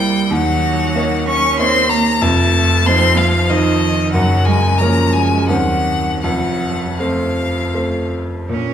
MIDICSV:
0, 0, Header, 1, 4, 480
1, 0, Start_track
1, 0, Tempo, 638978
1, 233, Time_signature, 3, 2, 24, 8
1, 3108, Tempo, 669643
1, 3588, Tempo, 684151
1, 4068, Tempo, 747198
1, 6152, End_track
2, 0, Start_track
2, 0, Title_t, "Violin"
2, 0, Program_c, 0, 40
2, 0, Note_on_c, 0, 79, 109
2, 239, Note_on_c, 0, 78, 101
2, 250, Note_off_c, 0, 79, 0
2, 956, Note_off_c, 0, 78, 0
2, 961, Note_on_c, 0, 85, 114
2, 1190, Note_off_c, 0, 85, 0
2, 1196, Note_on_c, 0, 84, 117
2, 1423, Note_on_c, 0, 82, 111
2, 1434, Note_off_c, 0, 84, 0
2, 1668, Note_on_c, 0, 81, 112
2, 1679, Note_off_c, 0, 82, 0
2, 2150, Note_on_c, 0, 84, 122
2, 2161, Note_off_c, 0, 81, 0
2, 2382, Note_on_c, 0, 77, 105
2, 2394, Note_off_c, 0, 84, 0
2, 2625, Note_on_c, 0, 75, 112
2, 2636, Note_off_c, 0, 77, 0
2, 3094, Note_off_c, 0, 75, 0
2, 3099, Note_on_c, 0, 78, 101
2, 3335, Note_on_c, 0, 80, 110
2, 3346, Note_off_c, 0, 78, 0
2, 3567, Note_on_c, 0, 82, 107
2, 3578, Note_off_c, 0, 80, 0
2, 3814, Note_on_c, 0, 80, 101
2, 3824, Note_off_c, 0, 82, 0
2, 4056, Note_off_c, 0, 80, 0
2, 4060, Note_on_c, 0, 78, 101
2, 4530, Note_off_c, 0, 78, 0
2, 4534, Note_on_c, 0, 78, 89
2, 5037, Note_on_c, 0, 77, 72
2, 5047, Note_off_c, 0, 78, 0
2, 5755, Note_off_c, 0, 77, 0
2, 5993, Note_on_c, 0, 70, 49
2, 6152, Note_off_c, 0, 70, 0
2, 6152, End_track
3, 0, Start_track
3, 0, Title_t, "Grand piano"
3, 0, Program_c, 1, 0
3, 0, Control_c, 1, 64, 127
3, 0, Note_on_c, 1, 36, 74
3, 0, Note_on_c, 1, 48, 64
3, 0, Note_on_c, 1, 58, 56
3, 0, Note_on_c, 1, 64, 52
3, 0, Note_on_c, 1, 72, 60
3, 203, Note_off_c, 1, 48, 0
3, 204, Note_off_c, 1, 36, 0
3, 205, Note_off_c, 1, 58, 0
3, 206, Note_off_c, 1, 64, 0
3, 208, Note_off_c, 1, 72, 0
3, 229, Note_on_c, 1, 39, 84
3, 232, Note_on_c, 1, 51, 75
3, 244, Control_c, 1, 64, 0
3, 361, Control_c, 1, 64, 127
3, 716, Note_on_c, 1, 58, 58
3, 723, Note_on_c, 1, 63, 60
3, 728, Note_on_c, 1, 73, 64
3, 1162, Note_off_c, 1, 58, 0
3, 1165, Note_off_c, 1, 63, 0
3, 1168, Note_off_c, 1, 73, 0
3, 1196, Note_on_c, 1, 58, 61
3, 1196, Note_on_c, 1, 63, 61
3, 1203, Note_on_c, 1, 73, 66
3, 1636, Note_off_c, 1, 39, 0
3, 1637, Note_off_c, 1, 51, 0
3, 1641, Note_off_c, 1, 58, 0
3, 1641, Note_off_c, 1, 63, 0
3, 1644, Note_off_c, 1, 73, 0
3, 1662, Note_on_c, 1, 41, 96
3, 1664, Note_on_c, 1, 29, 81
3, 1679, Control_c, 1, 64, 0
3, 1813, Control_c, 1, 64, 127
3, 2163, Note_on_c, 1, 53, 61
3, 2166, Note_on_c, 1, 72, 65
3, 2167, Note_on_c, 1, 63, 59
3, 2604, Note_off_c, 1, 53, 0
3, 2606, Note_off_c, 1, 63, 0
3, 2606, Note_off_c, 1, 72, 0
3, 2632, Note_on_c, 1, 53, 64
3, 2633, Note_on_c, 1, 63, 57
3, 2636, Note_on_c, 1, 72, 69
3, 3077, Note_off_c, 1, 41, 0
3, 3078, Note_off_c, 1, 29, 0
3, 3079, Note_off_c, 1, 53, 0
3, 3080, Note_off_c, 1, 63, 0
3, 3081, Note_off_c, 1, 72, 0
3, 3108, Note_on_c, 1, 42, 84
3, 3111, Note_on_c, 1, 30, 83
3, 3121, Control_c, 1, 64, 0
3, 3231, Control_c, 1, 64, 127
3, 3589, Note_on_c, 1, 53, 59
3, 3590, Note_on_c, 1, 61, 53
3, 3594, Note_on_c, 1, 70, 57
3, 4041, Note_off_c, 1, 42, 0
3, 4041, Note_off_c, 1, 53, 0
3, 4042, Note_off_c, 1, 61, 0
3, 4043, Note_off_c, 1, 30, 0
3, 4044, Note_off_c, 1, 70, 0
3, 4066, Note_on_c, 1, 39, 66
3, 4066, Note_on_c, 1, 58, 53
3, 4069, Note_on_c, 1, 51, 57
3, 4073, Note_on_c, 1, 60, 50
3, 4074, Note_on_c, 1, 72, 51
3, 4082, Control_c, 1, 64, 0
3, 4189, Control_c, 1, 64, 127
3, 4519, Note_off_c, 1, 58, 0
3, 4522, Note_off_c, 1, 60, 0
3, 4522, Note_off_c, 1, 72, 0
3, 4530, Note_off_c, 1, 39, 0
3, 4531, Note_off_c, 1, 51, 0
3, 4545, Note_on_c, 1, 29, 61
3, 4546, Note_on_c, 1, 41, 72
3, 4560, Control_c, 1, 64, 0
3, 4655, Control_c, 1, 64, 127
3, 5035, Note_on_c, 1, 57, 44
3, 5035, Note_on_c, 1, 60, 47
3, 5041, Note_on_c, 1, 72, 51
3, 5488, Note_off_c, 1, 57, 0
3, 5488, Note_off_c, 1, 60, 0
3, 5491, Note_off_c, 1, 72, 0
3, 5515, Note_on_c, 1, 60, 47
3, 5516, Note_on_c, 1, 57, 45
3, 5518, Note_on_c, 1, 72, 48
3, 5968, Note_off_c, 1, 29, 0
3, 5969, Note_off_c, 1, 41, 0
3, 5969, Note_off_c, 1, 57, 0
3, 5969, Note_off_c, 1, 60, 0
3, 5970, Note_off_c, 1, 72, 0
3, 5996, Note_on_c, 1, 46, 61
3, 6005, Control_c, 1, 64, 0
3, 6122, Control_c, 1, 64, 127
3, 6152, Note_off_c, 1, 46, 0
3, 6152, End_track
4, 0, Start_track
4, 0, Title_t, "Cello"
4, 0, Program_c, 2, 42
4, 0, Note_on_c, 2, 55, 90
4, 235, Note_on_c, 2, 54, 103
4, 246, Note_off_c, 2, 55, 0
4, 955, Note_on_c, 2, 61, 102
4, 966, Note_off_c, 2, 54, 0
4, 1199, Note_on_c, 2, 60, 113
4, 1210, Note_off_c, 2, 61, 0
4, 1430, Note_on_c, 2, 58, 100
4, 1442, Note_off_c, 2, 60, 0
4, 1664, Note_off_c, 2, 58, 0
4, 1669, Note_on_c, 2, 57, 106
4, 2153, Note_on_c, 2, 60, 103
4, 2165, Note_off_c, 2, 57, 0
4, 2380, Note_on_c, 2, 53, 98
4, 2392, Note_off_c, 2, 60, 0
4, 2624, Note_on_c, 2, 51, 96
4, 2635, Note_off_c, 2, 53, 0
4, 3098, Note_off_c, 2, 51, 0
4, 3102, Note_on_c, 2, 54, 94
4, 3340, Note_on_c, 2, 56, 87
4, 3351, Note_off_c, 2, 54, 0
4, 3578, Note_off_c, 2, 56, 0
4, 3583, Note_on_c, 2, 58, 81
4, 3814, Note_on_c, 2, 56, 91
4, 3825, Note_off_c, 2, 58, 0
4, 4059, Note_on_c, 2, 54, 80
4, 4070, Note_off_c, 2, 56, 0
4, 4532, Note_off_c, 2, 54, 0
4, 4536, Note_on_c, 2, 54, 84
4, 5027, Note_on_c, 2, 53, 64
4, 5037, Note_off_c, 2, 54, 0
4, 5750, Note_off_c, 2, 53, 0
4, 5996, Note_on_c, 2, 61, 80
4, 6152, Note_off_c, 2, 61, 0
4, 6152, End_track
0, 0, End_of_file